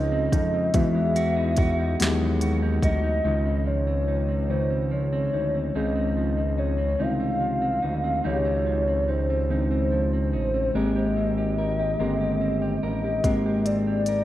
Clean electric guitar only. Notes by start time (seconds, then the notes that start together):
Already playing: C#3 F3 C4 D#4
0.12 C4
0.32 D#4
0.54 C4
0.74 E3
0.95 G#3
1.16 F#4
1.36 D#4
1.58 F#4
1.79 D#4
2.00 E3
2.21 G#3
2.42 F#4
2.62 D#4
2.83 F#4
3.03 D#4
3.24 C#3 D#4
3.45 C4
3.66 F3
3.87 C4
4.08 D#4
4.29 C4
4.50 C#3 D#4
4.70 C4
4.91 F3
5.13 C4
5.33 D#4
5.55 C4
5.75 C#3 D#4
5.96 C4
6.17 F3
6.37 C4
6.58 D#4
6.78 C4
6.99 C#3 D#4
7.20 C4
7.41 F3
7.62 C4
7.82 D#4
8.04 C4
8.24 C#3 D#4
8.45 C4
8.66 F3
8.88 C4
9.08 D#4
9.30 C4
9.50 C#3 D#4
9.71 C4
9.92 F3
10.13 C4
10.33 D#4
10.54 C4
10.75 G#3 A#4
10.96 G4
11.17 C4
11.38 G4
11.58 A#4
11.79 G4
12.00 G#3 A#4
12.21 G4
12.41 C4
12.62 G4
12.83 A#4
13.04 G4
13.25 G#3 A#4
13.46 G4
13.66 C4
13.87 G4
14.08 A#4